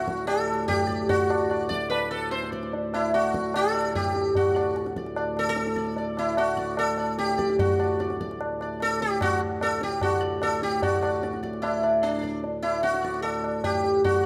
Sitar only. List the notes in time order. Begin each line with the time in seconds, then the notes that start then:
Already playing: F#4
0.27 A4
0.68 G4
0.89 D5
1.09 F#4
1.30 D5
1.50 D5
1.69 D5
1.90 B4
2.11 A4
2.31 C5
2.52 D5
2.94 E4
3.14 F#4
3.56 A4
3.75 D5
3.95 G4
4.36 F#4
4.57 D5
4.97 D5
5.17 D5
5.39 A4
5.49 A4
5.78 D5
5.98 D5
6.19 E4
6.38 F#4
6.59 D5
6.79 A4
6.99 D5
7.19 G4
7.38 D5
7.59 F#4
7.80 D5
8.00 D5
8.21 D5
8.62 D5
8.82 A4
9.02 G4
9.22 F#4
9.63 A4
9.83 G4
10.03 F#4
10.23 D5
10.43 A4
10.63 G4
10.83 F#4 D5
11.04 D5
11.23 D5
11.43 D5
11.62 E4
11.83 D5
12.03 D4
12.23 D5
12.63 E4
12.83 F#4
13.04 D5
13.22 A4
13.64 G4
14.04 F#4